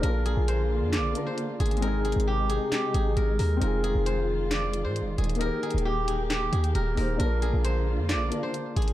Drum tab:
HH |x-----------x-----------x-----------------------x-----------x-----------x-----------x--x--x--x--|x-----------x---x---x---------------x-----------x-----------x-----------x-----------o-----------|x-----------x-----------x-----------------------x-----------x-----------x-----------x--x--x--x--|x-----------x---x---x---------------x-----------x-----------x-----x-----x-----------o-----------|
CP |------------------------------------------------x-----------------------------------------------|------------------------------------------------x-----------------------------------------------|------------------------------------------------x-----------------------------------------------|------------------------------------------------x-----------------------------------------------|
SD |------------------------------------------------o-----------------------------------------------|------------------------------------------------o-----------------------------------------------|------------------------------------------------o-----------------------------------------------|------------------------------------------------o-----------------------------------------------|

HH |x-----------x-----------x-----------------------x-----------x-----------x-----------x--x--x-----|
CP |------------------------------------------------x-----------------------------------------------|
SD |------------------------------------------------o-----------------------------------------------|